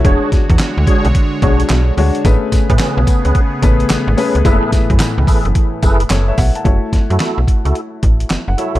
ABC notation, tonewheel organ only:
X:1
M:4/4
L:1/16
Q:"Swing 16ths" 1/4=109
K:F#m
V:1 name="Tonewheel organ"
[DFGc]2 z4 [DFGc] z3 [DFGc] z4 z | z3 [CGB] [CGB] z2 [CGB] z6 [CGB] z | [EGAB]2 z4 [EGAB] z3 [EGAB] z4 z | z3 [EFA] [EFA] z2 [EFA] z6 [EFA] z |]